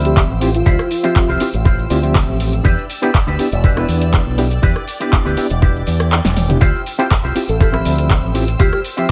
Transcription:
Already playing: D2 F3 C4 E4 F4 G4 C5 E5 G5 B5 E6
0.05 G4, closed hi-hat, cabasa
0.17 kick, clap, closed hi-hat, cabasa
0.30 A1
0.41 C4 E4 F4 G4, open hi-hat, cabasa
0.54 F4, closed hi-hat, cabasa
0.66 D2 E4 F4 G4 C5, kick, closed hi-hat, cabasa
0.79 cross-stick, cabasa
0.91 F4, open hi-hat, cabasa
1.03 F3 C4 E4 F4 G4 C5 E5, closed hi-hat, cabasa
1.16 kick, clap, closed hi-hat, cabasa
1.28 C2 E4 F4 G4 C5, cabasa
1.40 C4 E4 F4 G4, open hi-hat, cabasa
1.54 A1, closed hi-hat, cabasa
1.65 E4 F4 G4 C5, kick, closed hi-hat, cabasa
1.79 cabasa
1.90 D2 C4 E4 F4 G4, open hi-hat, cabasa
2.03 F3 C4 G4 E5, closed hi-hat, cabasa
2.15 kick, clap, closed hi-hat, cabasa
2.28 A1
2.40 open hi-hat, cabasa
2.53 closed hi-hat, cabasa
2.64 E2 D4 E4 G4 B4 D5 G5 E6, kick, closed hi-hat, cabasa
2.79 cabasa
2.90 open hi-hat, cabasa
3.02 B3 D4 E4 G4 B4, closed hi-hat, cabasa
3.14 kick, clap, closed hi-hat, cabasa
3.27 D2 D4 E4 G4 B4, cabasa
3.39 B3 D4 E4 G4, muted fingered electric bass stroke, open hi-hat, cabasa
3.52 E1, closed hi-hat, cabasa
3.63 D4 E4 G4 B4, kick, closed hi-hat, cabasa
3.76 B3 D4 E4 B4, cross-stick, cabasa
3.89 E2, open hi-hat, cabasa
4.01 closed hi-hat, cabasa
4.13 kick, clap, closed hi-hat, cabasa
4.27 B1
4.38 B3 D4 E4 G4, open hi-hat, cabasa
4.51 closed hi-hat, cabasa
4.62 E2 D4 E4 G4 B4 D6, kick, closed hi-hat, cabasa
4.76 cross-stick, cabasa
4.88 open hi-hat, cabasa
5.00 B3 D4 E4 G4 B4, closed hi-hat, cabasa
5.12 kick, clap, closed hi-hat, cabasa
5.25 D2 D4 E4 G4 B4, cabasa
5.37 B3 D4 E4 G4, muted fingered electric bass stroke, open hi-hat, cabasa
5.50 E1, closed hi-hat, cabasa
5.62 D4 E4 G4 B4, kick, closed hi-hat, cabasa
5.76 cabasa
5.87 E2, open hi-hat, cabasa
6.00 cross-stick, closed hi-hat, cabasa
6.12 clap, closed hi-hat, cabasa
6.25 E1, snare, cabasa
6.37 open hi-hat, mid tom, cabasa
6.49 B3 D4 E4 G4, closed hi-hat, mid tom, cabasa
6.61 D2 E4 F4 G4 C5 E6, kick, closed hi-hat, cabasa
6.75 cabasa
6.86 open hi-hat, cabasa
6.98 C4 E4 F4 G4 C5, closed hi-hat, cabasa
7.11 kick, clap, closed hi-hat, cabasa
7.23 C2 E4 F4 G4 C5, cabasa
7.35 C4 E4 F4 G4, muted fingered electric bass stroke, open hi-hat, cabasa
7.49 A1 A4, closed hi-hat, cabasa
7.60 E4 F4 G4 A4 C5, kick, closed hi-hat, cabasa
7.72 F3 C4 E5 B5, cross-stick, cabasa
7.85 D2, open hi-hat, cabasa
7.98 closed hi-hat, cabasa
8.10 kick, clap, closed hi-hat, cabasa
8.23 A1
8.34 C4 E4 F4 G4, open hi-hat, cabasa
8.48 closed hi-hat, cabasa
8.59 D2 E4 F4 G4 C5, kick, closed hi-hat, cabasa
8.73 G4, cross-stick, cabasa
8.85 open hi-hat, cabasa
8.97 F3 C4 E4 F4 G4 C5 E5, closed hi-hat, cabasa

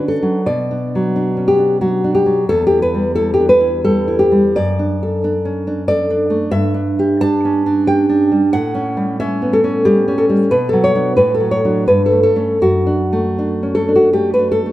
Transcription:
Already playing: D3 C#4 D4 F#4
0.08 A4
0.22 F#3
0.46 B2 D5
0.71 D4
0.95 F#3
1.16 D4
1.37 C#4
1.48 G4
1.58 D4
1.81 F#3 F#4
2.04 D4
2.15 G4
2.26 F#3
2.49 E2 A4
2.67 G4
2.71 E4
2.82 B4
2.94 G3
3.15 E4 A4
3.34 G4
3.40 D4
3.49 B4
3.60 E4
3.84 G3 A4
4.08 E4
4.19 G4
4.32 G3
4.56 F#2 D5
4.79 D4
5.03 A4
5.24 D4
5.45 C#4
5.67 D4
5.88 A4 D5
6.10 D4
6.30 A3
6.51 G2 E5
6.74 D4
6.99 G4
7.21 D4 A5
7.45 C#4
7.66 D4
7.87 G4 G5
8.09 D4
8.32 G3
8.53 A2 F#5
8.74 C#4
8.97 G3
9.20 C#4 E5
9.42 B3
9.53 A4
9.64 C#4
9.85 G3 G4
10.08 C#4
10.18 A4
10.29 G3
10.51 B2 B4
10.69 A4
10.73 F#3
10.84 C#5
10.95 F#3 D4
11.17 A2 B4
11.34 A4
11.40 F#3
11.51 C#5
11.65 F#3 D4
11.88 G2 B4
12.06 A4
12.12 A3
12.23 A4
12.36 A3 C#4
12.62 F#2 F#4
12.86 D4
13.13 A3
13.39 D4
13.63 C#4
13.75 A4
13.88 D4
13.95 F#4
14.13 A3 G4
14.34 B4
14.39 D4
14.52 A4
14.66 A3

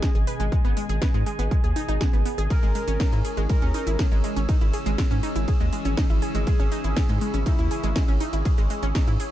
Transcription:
Already playing: B2 D#3 G#3 C#4 G#4 D#5 G#5
0.02 G#3, kick, snare, closed hi-hat
0.15 G#1 G#4, closed hi-hat
0.27 B4, open hi-hat
0.40 G#1 G#3, closed hi-hat
0.52 G#3, kick, closed hi-hat
0.65 G#1 B3, closed hi-hat
0.77 G#3, open hi-hat
0.89 G#1 G#4, closed hi-hat
1.02 B4, kick, snare, closed hi-hat
1.14 G#2 G#3, closed hi-hat
1.26 G#3, open hi-hat
1.39 G#1 B3, closed hi-hat
1.51 G#3, kick, closed hi-hat
1.64 D#2 G#4, closed hi-hat
1.76 D#4, open hi-hat
1.89 G#1 D#4, closed hi-hat
2.01 B3, kick, snare, closed hi-hat
2.13 G#1 B3, closed hi-hat
2.26 B3, open hi-hat
2.38 G#1 G#4, closed hi-hat
2.50 C#3 E3 C#4 E4 G#4 A#4, kick, closed hi-hat, ride
2.63 G#1 G#3, closed hi-hat
2.75 G#3, open hi-hat
2.88 G#1 C#4, closed hi-hat
3.00 D#4, kick, snare, closed hi-hat, ride
3.12 G#2 E4, closed hi-hat
3.25 G#4, open hi-hat
3.37 G#1 G#3, closed hi-hat
3.49 G#3 A#4 E6, kick, closed hi-hat, ride
3.62 D#2 C#4, closed hi-hat
3.74 D#4, open hi-hat
3.87 G#1 E4, closed hi-hat
3.99 G#4, kick, snare, closed hi-hat, ride
4.12 G#1 G#3, closed hi-hat
4.24 G#3, open hi-hat
4.36 G#1 C#4, closed hi-hat
4.49 D#4, kick, closed hi-hat, ride
4.61 G#1 E4, closed hi-hat
4.74 G#4, open hi-hat
4.86 G#1 G#3, closed hi-hat
4.98 G#3, kick, snare, closed hi-hat, ride
5.11 G#2 C#4, closed hi-hat
5.23 D#4, open hi-hat
5.36 G#1 E4, closed hi-hat
5.48 G#4, kick, closed hi-hat, ride
5.60 D#2 G#3, closed hi-hat
5.73 G#3, open hi-hat
5.85 G#1 C#4, closed hi-hat
5.97 D#4, kick, snare, closed hi-hat, ride
6.10 G#1 E4, closed hi-hat
6.22 G#4, open hi-hat
6.35 G#1 G#3, closed hi-hat
6.47 G#3 G#4, kick, closed hi-hat, ride
6.59 G#1 C#4, closed hi-hat
6.72 D#4, open hi-hat
6.84 G#1 E4, closed hi-hat
6.97 G#4, kick, snare, closed hi-hat, ride
7.09 G#2 G#3, closed hi-hat
7.21 G#3, open hi-hat
7.34 G#1 C#4, closed hi-hat
7.46 D#4 E4, kick, closed hi-hat, ride
7.59 D#2 E4, closed hi-hat
7.71 G#4, open hi-hat
7.83 G#1 G#3, closed hi-hat
7.96 G#3, kick, snare, closed hi-hat, ride
8.08 G#1 C#4, closed hi-hat
8.21 D#4, open hi-hat
8.33 G#1 E4, closed hi-hat
8.45 G#4, kick, closed hi-hat, ride
8.58 G#1 G#3, closed hi-hat
8.70 G#3, open hi-hat
8.83 G#1 C#4, closed hi-hat
8.95 D#4, kick, snare, closed hi-hat, ride
9.08 G#2 E4, closed hi-hat
9.20 G#4, open hi-hat

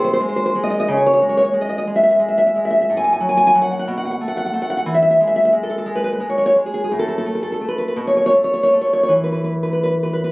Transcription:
Already playing: C3
0.04 C5
0.13 C5
0.20 G#3
0.28 C5
0.36 C5
0.46 C5
0.55 G#3
0.63 D#5
0.70 D#5
0.80 D#5
0.88 C#3
0.97 C#5
1.06 C#5
1.14 C#5
1.22 G#3
1.29 C#5
1.37 C#5
1.45 C#5
1.53 G#3
1.61 D#5
1.69 D#5
1.78 D#5
1.87 G#3
1.96 E5
2.03 E5
2.11 E5
2.19 G#3
2.28 E5
2.38 E5
2.47 E5
2.56 G#3
2.65 E5
2.71 E5
2.81 E5
2.90 A2
2.97 G#5
3.04 G#5
3.13 G#5
3.20 F#3
3.29 G#5
3.37 G#5
3.47 G#5
3.55 F#3
3.62 F#5
3.71 F#5
3.79 F#5
3.88 B2
3.98 F#5
4.05 F#5
4.11 F#5
4.21 A3
4.28 F#5
4.37 F#5
4.46 F#5
4.53 A3
4.62 F#5
4.70 F#5
4.77 F#5
4.86 E3
4.94 E5
5.02 E5
5.11 E5
5.20 G#3
5.27 E5
5.36 E5
5.45 E5
5.53 G#3
5.63 A4
5.70 A4
5.78 A4
5.86 G#3
5.95 B4
6.04 B4
6.13 B4
6.20 G#3
6.29 C#5
6.38 C#5
6.46 C#5
6.56 G#3
6.66 G#4
6.74 G#4
6.84 G#4
6.91 A2
6.99 A4
7.08 A4
7.18 A4
7.26 A3
7.35 A4
7.43 A4
7.52 A4
7.61 A3
7.68 B4
7.78 B4
7.88 B4
7.96 B2
8.07 C#5
8.17 C#5
8.26 C#5
8.34 A3
8.44 C#5
8.54 C#5
8.63 C#5
8.73 A3
8.81 C#5
8.93 C#5
9.03 C#5
9.08 E3
9.24 B4
9.32 B4
9.44 B4
9.63 B4
9.73 B4
9.83 B4
10.03 B4
10.13 B4
10.24 B4

